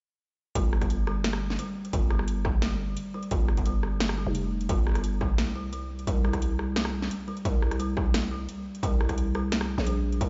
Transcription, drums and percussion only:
0.55 kick, closed hi-hat
0.73 cross-stick
0.81 kick, cross-stick, closed hi-hat
0.90 closed hi-hat
1.07 cross-stick
1.24 snare, closed hi-hat
1.33 cross-stick
1.50 snare
1.59 closed hi-hat
1.85 closed hi-hat
1.93 kick, closed hi-hat
2.10 cross-stick
2.19 cross-stick
2.28 closed hi-hat
2.45 kick, cross-stick
2.62 snare, closed hi-hat
2.97 closed hi-hat
3.23 closed hi-hat
3.31 kick, closed hi-hat
3.48 cross-stick
3.57 kick, closed hi-hat
3.66 closed hi-hat
3.83 cross-stick
4.00 snare, closed hi-hat
4.09 cross-stick
4.35 closed hi-hat
4.61 closed hi-hat
4.69 kick, closed hi-hat
4.87 cross-stick
4.89 cross-stick
4.92 cross-stick
4.94 cross-stick, closed hi-hat
4.96 cross-stick
4.99 cross-stick
5.01 cross-stick, closed hi-hat
5.21 kick, cross-stick
5.38 snare, closed hi-hat
5.73 closed hi-hat
5.99 closed hi-hat
6.07 kick, closed hi-hat
6.25 cross-stick
6.33 kick, cross-stick, closed hi-hat
6.42 closed hi-hat
6.59 cross-stick
6.76 snare, closed hi-hat
6.85 cross-stick
7.02 snare
7.11 closed hi-hat
7.37 closed hi-hat
7.45 kick, closed hi-hat
7.62 cross-stick
7.71 cross-stick, closed hi-hat
7.80 closed hi-hat
7.97 kick, cross-stick
8.14 snare, closed hi-hat
8.49 closed hi-hat
8.75 closed hi-hat
8.83 kick, closed hi-hat
9.01 cross-stick
9.09 kick, cross-stick, closed hi-hat
9.18 closed hi-hat
9.35 cross-stick
9.52 snare, closed hi-hat
9.61 cross-stick
9.78 snare
9.87 closed hi-hat
10.12 closed hi-hat
10.21 kick, closed hi-hat

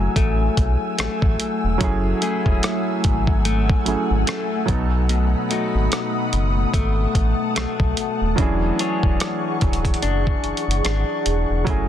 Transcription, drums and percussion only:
0.16 kick, closed hi-hat
0.57 kick, closed hi-hat
0.99 cross-stick, closed hi-hat
1.22 kick
1.40 closed hi-hat
1.81 kick, closed hi-hat
2.22 closed hi-hat
2.46 kick
2.63 cross-stick, closed hi-hat
3.04 kick, closed hi-hat
3.27 kick
3.45 closed hi-hat
3.70 kick
3.86 closed hi-hat
4.27 cross-stick, closed hi-hat
4.68 kick, closed hi-hat
5.09 closed hi-hat
5.51 closed hi-hat
5.92 cross-stick, closed hi-hat
6.33 closed hi-hat
6.74 kick, closed hi-hat
7.15 kick, closed hi-hat
7.56 cross-stick, closed hi-hat
7.80 kick
7.97 closed hi-hat
8.38 kick, closed hi-hat
8.79 closed hi-hat
9.03 kick
9.20 cross-stick, closed hi-hat
9.61 kick, closed hi-hat
9.73 closed hi-hat
9.85 kick, closed hi-hat
9.94 closed hi-hat
10.02 closed hi-hat
10.27 kick
10.44 closed hi-hat
10.57 closed hi-hat
10.71 closed hi-hat
10.85 cross-stick, closed hi-hat
11.26 closed hi-hat
11.67 kick, closed hi-hat

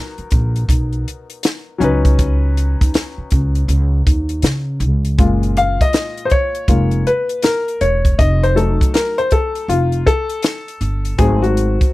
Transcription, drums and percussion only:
0.18 closed hi-hat
0.31 kick, closed hi-hat
0.56 closed hi-hat
0.69 kick, closed hi-hat
0.92 closed hi-hat
1.08 closed hi-hat
1.30 closed hi-hat
1.43 snare, closed hi-hat
1.81 closed hi-hat
2.05 kick, closed hi-hat
2.19 kick, closed hi-hat
2.57 closed hi-hat
2.81 kick, closed hi-hat
2.94 snare, closed hi-hat
3.31 kick, closed hi-hat
3.55 closed hi-hat
3.69 closed hi-hat
4.07 kick, closed hi-hat
4.29 closed hi-hat
4.42 snare, closed hi-hat
4.80 closed hi-hat
5.05 closed hi-hat
5.18 kick, closed hi-hat
5.43 closed hi-hat
5.57 closed hi-hat
5.81 kick, closed hi-hat
5.93 snare, closed hi-hat
6.18 closed hi-hat
6.30 kick, closed hi-hat
6.55 closed hi-hat
6.68 kick, closed hi-hat
6.91 closed hi-hat
7.07 closed hi-hat
7.29 closed hi-hat
7.43 snare, closed hi-hat
7.68 closed hi-hat
7.81 closed hi-hat
8.05 kick, closed hi-hat
8.19 kick, closed hi-hat
8.44 closed hi-hat
8.57 closed hi-hat
8.81 kick, closed hi-hat
8.94 snare, closed hi-hat
9.18 closed hi-hat
9.31 kick, closed hi-hat
9.55 closed hi-hat
9.70 closed hi-hat
9.92 closed hi-hat
10.07 kick, closed hi-hat
10.29 closed hi-hat
10.43 snare, closed hi-hat
10.68 closed hi-hat
10.81 closed hi-hat
11.05 closed hi-hat
11.18 kick, closed hi-hat
11.44 closed hi-hat
11.57 closed hi-hat
11.81 kick, closed hi-hat

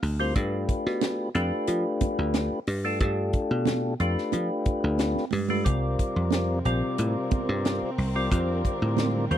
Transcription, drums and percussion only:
0.03 open hi-hat
0.35 kick, closed hi-hat, muted conga
0.69 kick, closed hi-hat
0.87 snare
1.01 snare, closed hi-hat, high conga
1.34 closed hi-hat, muted conga
1.67 closed hi-hat, muted conga
2.01 kick, closed hi-hat, muted conga, high conga
2.34 snare, closed hi-hat, high conga
2.67 open hi-hat
3.01 kick, closed hi-hat
3.33 kick, closed hi-hat
3.65 snare, closed hi-hat, high conga, low conga
4.00 closed hi-hat, muted conga
4.18 snare
4.32 closed hi-hat, muted conga, high conga
4.65 kick, closed hi-hat, muted conga
4.98 snare, closed hi-hat, high conga
5.15 snare, high conga
5.31 open hi-hat, low conga
5.49 low conga
5.64 kick, closed hi-hat, muted conga
5.99 kick, closed hi-hat
6.31 snare, closed hi-hat, high conga
6.64 closed hi-hat, muted conga
6.98 closed hi-hat, muted conga
7.31 kick, closed hi-hat, muted conga, high conga
7.65 snare, closed hi-hat, high conga
7.99 open hi-hat
8.32 kick, closed hi-hat, muted conga
8.65 kick, closed hi-hat
8.97 snare, closed hi-hat, high conga, low conga
9.30 closed hi-hat, muted conga

